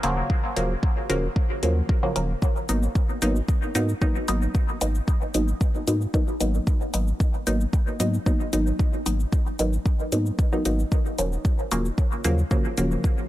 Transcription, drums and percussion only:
0.03 closed hi-hat
0.30 kick
0.56 closed hi-hat
0.83 kick
1.10 closed hi-hat
1.36 kick
1.63 closed hi-hat
1.89 kick
2.16 closed hi-hat
2.42 kick, shaker
2.56 shaker
2.69 closed hi-hat, shaker
2.83 shaker
2.95 kick, shaker
3.09 shaker
3.22 closed hi-hat, shaker
3.36 shaker
3.48 kick, shaker
3.62 shaker
3.75 closed hi-hat, shaker
3.89 shaker
4.02 kick, shaker
4.15 shaker
4.28 closed hi-hat, shaker
4.42 shaker
4.55 kick, shaker
4.68 shaker
4.81 closed hi-hat, shaker
4.95 shaker
5.08 kick, shaker
5.22 shaker
5.34 closed hi-hat, shaker
5.48 shaker
5.61 kick, shaker
5.75 shaker
5.88 closed hi-hat, shaker
6.01 shaker
6.14 kick, shaker
6.28 shaker
6.41 closed hi-hat, shaker
6.54 shaker
6.67 kick, shaker
6.81 shaker
6.94 closed hi-hat, shaker
7.08 shaker
7.20 kick, shaker
7.34 shaker
7.47 closed hi-hat, shaker
7.61 shaker
7.73 kick, shaker
7.87 shaker
8.00 closed hi-hat, shaker
8.14 shaker
8.26 kick, shaker
8.40 shaker
8.53 closed hi-hat, shaker
8.67 shaker
8.79 kick, shaker
8.93 shaker
9.06 closed hi-hat, shaker
9.20 shaker
9.32 kick, shaker
9.46 shaker
9.59 closed hi-hat, shaker
9.73 shaker
9.86 kick, shaker
10.00 shaker
10.12 closed hi-hat, shaker
10.26 shaker
10.39 kick, shaker
10.53 shaker
10.65 closed hi-hat, shaker
10.79 shaker
10.92 kick, shaker
11.06 shaker
11.18 closed hi-hat, shaker
11.32 shaker
11.45 kick, shaker
11.59 shaker
11.71 closed hi-hat, shaker
11.85 shaker
11.98 kick, shaker
12.12 shaker
12.24 closed hi-hat, shaker
12.38 shaker
12.51 kick, shaker
12.65 shaker
12.78 closed hi-hat, shaker
12.91 shaker
13.04 kick, shaker
13.18 shaker

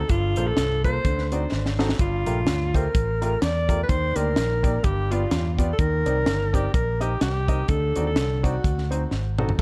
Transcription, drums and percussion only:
0.09 kick, closed hi-hat
0.36 closed hi-hat
0.57 snare, closed hi-hat
0.84 kick, closed hi-hat
1.05 kick, closed hi-hat
1.18 snare
1.32 closed hi-hat
1.52 snare
1.66 snare
1.79 snare
1.89 snare
1.99 kick, closed hi-hat
2.26 closed hi-hat
2.47 snare, closed hi-hat
2.75 kick, closed hi-hat
2.95 kick, closed hi-hat
3.22 closed hi-hat
3.42 snare, closed hi-hat
3.69 kick, closed hi-hat
3.89 kick, closed hi-hat
4.16 closed hi-hat
4.36 snare, closed hi-hat
4.64 kick, closed hi-hat
4.84 kick, closed hi-hat
5.12 closed hi-hat
5.31 snare, closed hi-hat
5.59 kick, closed hi-hat
5.79 kick, closed hi-hat
6.06 closed hi-hat
6.26 snare, closed hi-hat
6.54 kick, closed hi-hat
6.74 kick, closed hi-hat
7.01 closed hi-hat
7.21 snare, closed hi-hat
7.48 kick, closed hi-hat
7.68 kick, closed hi-hat
7.96 closed hi-hat
8.16 snare, closed hi-hat
8.44 kick, closed hi-hat
8.64 kick, closed hi-hat
8.78 snare
8.92 closed hi-hat
9.11 snare
9.39 mid tom
9.49 floor tom

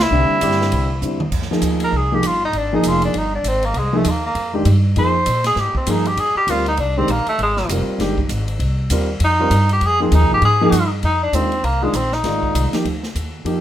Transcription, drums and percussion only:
0.41 hi-hat pedal, ride
0.52 snare
0.62 snare
0.72 ride
1.02 hi-hat pedal
1.20 mid tom
1.32 kick, crash
1.42 snare
1.52 snare
1.62 hi-hat pedal, ride
1.80 ride
2.23 hi-hat pedal, ride
2.53 ride
2.83 hi-hat pedal, ride
3.02 ride
3.14 ride
3.44 hi-hat pedal, ride
3.63 ride
3.74 ride
4.04 hi-hat pedal, ride
4.35 ride
4.65 hi-hat pedal, ride
4.96 ride
5.26 hi-hat pedal, ride
5.44 snare, ride
5.56 snare
5.75 kick
5.87 hi-hat pedal, ride
6.05 ride
6.17 ride
6.48 hi-hat pedal, ride
6.66 ride
6.77 ride
7.08 hi-hat pedal, ride
7.27 ride
7.39 ride
7.57 snare
7.69 hi-hat pedal, ride
8.00 snare, ride
8.18 kick
8.29 hi-hat pedal, ride
8.48 ride
8.60 ride
8.90 hi-hat pedal, ride
9.20 ride
9.51 hi-hat pedal, ride
9.69 ride
9.81 ride
10.12 hi-hat pedal, ride
10.42 ride
10.72 hi-hat pedal, ride
11.03 ride
11.33 hi-hat pedal, ride
11.52 ride
11.64 ride
11.94 hi-hat pedal, ride
12.12 snare
12.24 snare, ride
12.43 kick
12.55 hi-hat pedal, ride
12.73 snare, ride
12.85 ride
13.03 snare
13.15 hi-hat pedal, ride
13.46 ride

